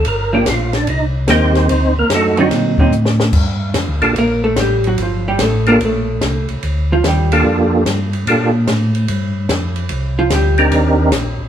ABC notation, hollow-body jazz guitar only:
X:1
M:4/4
L:1/8
Q:"Swing" 1/4=146
K:Gm
V:1 name="Hollow-body jazz guitar"
z [F,B,D] z4 [G,B,E]2 | z3 [D,^F,CE]2 [D,F,CE] z2 | z4 [B,B] [A,A] [G,G] [^F,^F] | [F,F] [G,G] [A,A] [B,B] [A,A]3 z |
z [F,F] [G,G]2 z4 | z8 | z [F,F] [G,G]2 z4 |]